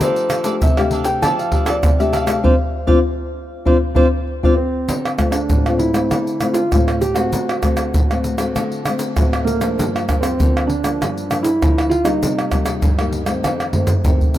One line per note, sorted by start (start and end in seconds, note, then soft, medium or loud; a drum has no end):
0.00 0.59 F3 medium
0.00 0.42 A3 medium
0.00 0.42 D4 medium
0.00 0.29 D4 medium
0.00 0.42 G4 medium
0.00 0.30 A4 medium
0.00 0.58 C5 medium
0.00 0.31 D5 medium
0.00 0.32 F5 medium
0.00 pandeiro medium
0.00 shaker medium
0.00 surdo medium
0.16 pandeiro soft
0.16 shaker soft
0.30 0.43 D4 soft
0.30 0.43 A4 soft
0.30 0.45 D5 medium
0.30 0.45 F5 medium
0.30 pandeiro medium
0.30 tamborim medium
0.30 shaker medium
0.44 0.72 A3 medium
0.44 0.55 D4 medium
0.44 0.72 D4 medium
0.44 0.72 G4 medium
0.44 0.55 A4 medium
0.44 0.55 D5 medium
0.44 0.56 F5 medium
0.44 pandeiro medium
0.44 shaker medium
0.62 1.20 C3 medium
0.62 0.77 E5 medium
0.62 pandeiro medium
0.62 shaker medium
0.62 surdo loud
0.77 1.34 A3 medium
0.77 1.34 D4 medium
0.77 1.34 G4 medium
0.77 0.91 A4 soft
0.77 0.92 D5 soft
0.77 0.84 F5 medium
0.77 0.92 F5 soft
0.77 pandeiro soft
0.77 tamborim medium
0.77 shaker soft
0.91 1.07 D4 medium
0.91 1.07 A4 medium
0.91 1.06 D5 medium
0.91 1.05 F5 medium
0.91 pandeiro medium
1.04 1.22 D5 soft
1.04 1.21 F5 medium
1.04 1.21 G5 loud
1.04 pandeiro medium
1.04 shaker medium
1.09 1.23 A4 soft
1.22 1.81 F3 medium
1.22 1.52 D4 medium
1.22 1.53 A4 medium
1.22 1.54 D5 medium
1.22 1.54 F5 medium
1.22 1.39 A5 loud
1.22 pandeiro medium
1.22 tamborim medium
1.22 shaker medium
1.22 surdo medium
1.39 1.67 F5 medium
1.39 pandeiro soft
1.39 shaker soft
1.52 1.82 A3 medium
1.52 1.65 D4 soft
1.52 1.82 D4 medium
1.52 1.82 G4 medium
1.52 1.65 A4 soft
1.52 1.66 D5 medium
1.52 1.66 F5 medium
1.52 pandeiro medium
1.52 surdo medium
1.66 1.76 D4 medium
1.66 1.77 A4 medium
1.66 1.77 D5 medium
1.66 1.97 D5 medium
1.66 1.77 F5 medium
1.66 pandeiro medium
1.66 tamborim medium
1.66 shaker medium
1.83 2.42 C3 medium
1.83 pandeiro medium
1.83 tamborim medium
1.83 shaker medium
1.83 surdo loud
1.99 2.25 A3 medium
1.99 2.25 D4 medium
1.99 2.25 G4 medium
1.99 2.12 A4 soft
1.99 2.13 D5 soft
1.99 2.14 E5 medium
1.99 2.13 F5 soft
1.99 pandeiro soft
1.99 shaker soft
2.12 2.43 D4 medium
2.12 2.43 A4 medium
2.12 2.43 D5 medium
2.12 4.23 F5 loud
2.12 2.43 F5 medium
2.12 pandeiro medium
2.12 tamborim medium
2.12 shaker medium
2.26 2.38 A3 medium
2.26 2.38 D4 medium
2.26 2.39 G4 medium
2.26 pandeiro medium
2.26 tamborim medium
2.26 shaker medium
2.43 2.54 C4 loud
2.43 2.54 D4 loud
2.43 2.54 F4 loud
2.43 2.54 C5 loud
2.43 2.54 D5 medium
2.43 2.54 F5 medium
2.43 surdo loud
2.87 2.98 C4 medium
2.87 2.99 D4 medium
2.87 2.99 F4 medium
2.87 2.99 C5 medium
2.87 2.99 D5 loud
2.87 2.99 F5 medium
2.87 surdo loud
3.65 3.76 C4 medium
3.65 3.76 D4 loud
3.65 3.76 F4 loud
3.65 3.77 C5 medium
3.65 3.76 D5 medium
3.65 3.76 F5 medium
3.65 surdo loud
3.94 4.06 C4 medium
3.94 4.05 D4 medium
3.94 4.06 F4 medium
3.94 4.06 C5 loud
3.94 4.07 D5 medium
3.94 4.06 F5 medium
3.94 surdo loud
4.43 4.53 C4 medium
4.43 4.53 D4 medium
4.43 4.53 F4 medium
4.43 4.54 C5 medium
4.43 4.54 D5 medium
4.43 4.54 F5 medium
4.43 surdo loud
4.56 5.36 C4 medium
4.88 5.46 D3 medium
4.88 pandeiro medium
4.88 shaker medium
4.88 surdo medium
5.05 pandeiro soft
5.05 tamborim medium
5.05 shaker soft
5.18 5.59 A3 medium
5.18 5.60 C4 medium
5.18 5.60 F4 medium
5.18 pandeiro medium
5.18 tamborim medium
5.18 shaker medium
5.18 surdo medium
5.31 5.80 D4 medium
5.31 pandeiro medium
5.31 tamborim medium
5.31 shaker medium
5.50 6.08 A2 medium
5.50 pandeiro medium
5.50 shaker medium
5.50 surdo loud
5.66 5.92 A3 medium
5.66 5.92 C4 medium
5.66 5.92 F4 medium
5.66 pandeiro soft
5.66 tamborim medium
5.66 shaker soft
5.79 6.52 E4 medium
5.79 pandeiro medium
5.94 6.36 A3 medium
5.94 6.36 C4 medium
5.94 pandeiro medium
5.94 tamborim medium
5.94 shaker medium
6.11 6.69 D3 medium
6.11 pandeiro medium
6.11 tamborim medium
6.11 shaker medium
6.11 surdo medium
6.27 pandeiro soft
6.27 shaker soft
6.40 6.59 A3 medium
6.40 6.60 C4 medium
6.40 6.60 F4 medium
6.40 pandeiro medium
6.40 tamborim medium
6.40 shaker medium
6.53 6.98 F4 medium
6.53 pandeiro medium
6.53 shaker medium
6.72 7.31 A2 medium
6.72 7.01 A3 soft
6.72 7.01 C4 medium
6.72 7.02 F4 medium
6.72 pandeiro medium
6.72 tamborim medium
6.72 shaker medium
6.72 surdo medium
6.88 pandeiro soft
6.88 tamborim medium
6.88 shaker soft
7.01 7.18 G4 medium
7.01 pandeiro medium
7.01 shaker medium
7.14 7.58 A3 medium
7.14 7.58 C4 medium
7.14 8.96 F#4 medium
7.14 7.58 F#4 medium
7.14 pandeiro medium
7.14 tamborim medium
7.14 shaker medium
7.33 7.91 D3 medium
7.33 pandeiro medium
7.33 shaker medium
7.33 surdo medium
7.49 pandeiro soft
7.49 tamborim medium
7.49 shaker soft
7.63 8.04 A3 medium
7.63 8.05 C4 medium
7.63 8.05 F#4 medium
7.63 pandeiro medium
7.63 tamborim medium
7.63 shaker medium
7.63 surdo medium
7.77 pandeiro medium
7.77 tamborim medium
7.77 shaker medium
7.94 8.53 A2 medium
7.94 pandeiro medium
7.94 shaker medium
7.94 surdo loud
8.11 8.36 A3 medium
8.11 8.37 C4 medium
8.11 8.37 F#4 medium
8.11 pandeiro soft
8.11 tamborim medium
8.11 shaker soft
8.24 pandeiro medium
8.24 shaker medium
8.38 8.81 A3 medium
8.38 8.81 C4 medium
8.38 8.81 F#4 medium
8.38 pandeiro medium
8.38 tamborim medium
8.38 shaker medium
8.56 9.14 D3 medium
8.56 pandeiro medium
8.56 tamborim medium
8.56 shaker medium
8.56 surdo medium
8.72 pandeiro soft
8.72 shaker soft
8.85 9.12 A3 medium
8.85 9.12 C4 medium
8.85 9.13 F#4 medium
8.85 pandeiro medium
8.85 tamborim medium
8.85 shaker medium
8.99 pandeiro medium
8.99 shaker medium
9.17 9.76 A2 medium
9.17 9.58 A3 medium
9.17 9.59 C4 medium
9.17 9.59 F#4 medium
9.17 pandeiro medium
9.17 tamborim medium
9.17 shaker medium
9.17 surdo loud
9.33 pandeiro soft
9.33 tamborim medium
9.33 shaker soft
9.45 10.25 A#3 medium
9.45 pandeiro medium
9.45 shaker medium
9.61 10.03 F3 medium
9.61 10.03 A#3 medium
9.61 10.03 D4 medium
9.61 pandeiro medium
9.61 tamborim medium
9.61 shaker medium
9.78 10.36 G2 medium
9.78 pandeiro medium
9.78 shaker medium
9.78 surdo medium
9.96 pandeiro soft
9.96 tamborim medium
9.96 shaker soft
10.08 10.34 F3 medium
10.08 10.34 A#3 medium
10.08 10.34 D4 medium
10.08 pandeiro medium
10.08 tamborim medium
10.08 shaker medium
10.08 surdo medium
10.21 10.65 C4 medium
10.21 pandeiro medium
10.21 tamborim medium
10.21 shaker medium
10.39 10.97 D3 medium
10.39 10.68 F3 medium
10.39 10.68 A#3 medium
10.39 10.68 D4 medium
10.39 pandeiro medium
10.39 shaker medium
10.39 surdo loud
10.57 pandeiro soft
10.57 tamborim medium
10.57 shaker soft
10.67 11.47 D4 medium
10.67 pandeiro medium
10.84 11.25 F3 medium
10.84 11.25 A#3 medium
10.84 11.26 D4 medium
10.84 pandeiro medium
10.84 tamborim medium
10.84 shaker medium
11.01 11.59 G2 medium
11.01 pandeiro medium
11.01 tamborim medium
11.01 shaker medium
11.01 surdo medium
11.18 pandeiro soft
11.18 shaker soft
11.30 11.48 F3 medium
11.30 11.49 A#3 medium
11.30 11.49 D4 medium
11.30 pandeiro medium
11.30 tamborim medium
11.30 shaker medium
11.43 11.92 E4 medium
11.43 pandeiro medium
11.43 shaker medium
11.62 12.20 D3 medium
11.62 11.90 F3 medium
11.62 11.90 A#3 medium
11.62 11.91 D4 medium
11.62 pandeiro medium
11.62 tamborim medium
11.62 shaker medium
11.62 surdo loud
11.78 pandeiro soft
11.78 tamborim medium
11.78 shaker soft
11.90 12.05 F4 medium
11.90 pandeiro medium
12.05 12.47 G3 medium
12.05 12.48 A#3 medium
12.05 13.85 D#4 medium
12.05 12.48 D#4 medium
12.05 pandeiro medium
12.05 tamborim medium
12.05 shaker medium
12.23 12.81 C3 medium
12.23 pandeiro medium
12.23 shaker medium
12.23 surdo medium
12.38 pandeiro soft
12.38 tamborim medium
12.38 shaker soft
12.51 12.81 G3 medium
12.51 12.82 A#3 soft
12.51 12.82 D#4 medium
12.51 pandeiro medium
12.51 tamborim medium
12.51 shaker medium
12.51 surdo medium
12.66 pandeiro medium
12.66 tamborim medium
12.66 shaker medium
12.82 13.42 G2 medium
12.82 pandeiro medium
12.82 shaker medium
12.82 surdo loud
12.99 13.25 G3 medium
12.99 13.25 A#3 medium
12.99 13.25 D#4 medium
12.99 pandeiro soft
12.99 tamborim medium
12.99 shaker soft
13.13 pandeiro medium
13.26 13.69 D#3 medium
13.26 13.69 A3 medium
13.26 13.70 C4 medium
13.26 pandeiro medium
13.26 tamborim medium
13.26 shaker medium
13.44 14.03 F2 medium
13.44 pandeiro medium
13.44 tamborim medium
13.44 shaker medium
13.44 surdo medium
13.60 pandeiro soft
13.60 tamborim medium
13.60 shaker soft
13.73 13.93 D#3 medium
13.73 13.93 A3 medium
13.73 13.93 C4 medium
13.73 surdo medium
13.73 pandeiro medium
13.87 surdo loud
13.87 pandeiro medium
13.87 shaker medium
14.05 14.38 C3 medium
14.05 14.38 D#3 medium
14.05 14.38 A3 medium
14.05 14.38 C4 medium
14.05 pandeiro medium
14.05 shaker medium
14.05 surdo loud
14.21 pandeiro soft
14.21 shaker soft
14.21 surdo medium
14.34 pandeiro medium
14.34 shaker medium